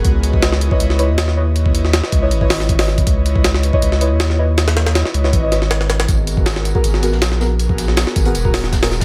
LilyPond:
<<
  \new Staff \with { instrumentName = "Analog synth pad" } { \time 4/4 \key cis \dorian \tempo 4 = 159 <e' b' cis'' dis''>4. <e' b' cis'' dis''>2 r8 | <e' b' cis'' dis''>4. <e' b' cis'' dis''>2 r8 | <e' b' cis'' dis''>4. <e' b' cis'' dis''>2 r8 | <e' b' cis'' dis''>4. <e' b' cis'' dis''>2 r8 |
<b fis' gis' ais'>4. <b fis' gis' ais'>2 r8 | <b fis' gis' ais'>4. <b fis' gis' ais'>2 r8 | }
  \new Staff \with { instrumentName = "Synth stab" } { \time 4/4 \key cis \dorian r4. r16 <e' b' cis'' dis''>8. <e' b' cis'' dis''>16 r8. <e' b' cis'' dis''>16 r16 | r4. r16 <e' b' cis'' dis''>16 r16 <e' b' cis'' dis''>16 r8. <e' b' cis'' dis''>16 r8 | r4. r16 <e' b' cis'' dis''>8. <e' b' cis'' dis''>16 r8. <e' b' cis'' dis''>16 r16 | r4. r16 <e' b' cis'' dis''>16 r16 <e' b' cis'' dis''>16 <e' b' cis'' dis''>16 r4 r16 |
r4. r16 <b fis' gis' ais'>8. <b fis' gis' ais'>16 r8. <b fis' gis' ais'>16 r16 | r4. r16 <b fis' gis' ais'>16 r16 <b fis' gis' ais'>16 r8. <b fis' gis' ais'>16 r8 | }
  \new Staff \with { instrumentName = "Sub bass" } { \clef bass \time 4/4 \key cis \dorian cis,4.~ cis,16 r16 cis,8. dis,4~ dis,16~ | dis,4~ dis,16 r16 cis,8 gis,,2 | cis,4.~ cis,16 r16 cis,8. dis,4~ dis,16~ | dis,4~ dis,16 r16 cis,8 gis,,2 |
gis,,4.~ gis,,16 r16 gis,,8. ais,,4~ ais,,16~ | ais,,4~ ais,,16 r16 gis,,8 dis,,2 | }
  \new DrumStaff \with { instrumentName = "Drums" } \drummode { \time 4/4 <hh bd>8 hh16 bd16 <hh sn>16 sn16 hh16 bd16 hh16 sn16 hh8 <hh sn>16 sn8. | hh16 bd16 hh16 sn16 <hh sn>16 sn16 <hh bd>8 hh16 bd16 <hho sn>16 sn16 <hh bd>16 <hho sn>16 sn16 <hh bd>16 | <hh bd>8 hh16 bd16 <hh sn>16 sn16 hh16 bd16 hh16 sn16 hh8 <hh sn>16 sn8. | <hh sn>16 <hh sn>16 <hh sn>16 <hh sn>16 <hh sn>16 sn16 hh16 sn16 <hh bd>8 <hh sn>16 sn16 <hh sn>16 sn16 <hh sn>16 <hh sn>16 |
<hh bd tamb>8 <hh tamb>16 bd16 <hh sn tamb>16 sn16 <hh tamb>16 bd16 <hh tamb>16 sn16 <hh tamb>16 sn16 <hh sn tamb>16 sn16 <sn tamb>8 | <hh tamb>16 bd16 <hh sn tamb>16 sn16 <hh sn tamb>16 sn16 <hh bd tamb>16 hh16 <hh tamb>16 bd16 <hho sn tamb>16 sn16 <hh bd sn tamb>16 <hho sn>16 <sn tamb>16 <hh bd sn tamb>16 | }
>>